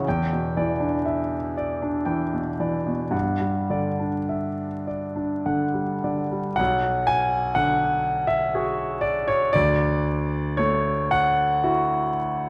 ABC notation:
X:1
M:3/4
L:1/16
Q:1/4=60
K:Bm
V:1 name="Grand piano"
g2 d2 e2 d2 g2 d2 | f2 d2 e2 d2 f2 d2 | f2 ^g2 f3 e3 d c | d4 c2 f4 z2 |]
V:2 name="Grand piano" clef=bass
E,, B,, E, D2 z2 D E, B,, E, B,, | G,, G, D, D2 z2 D D, G, D, G, | B,,,4 D,4 [F^G]4 | D,,4 A,4 [EF]4 |]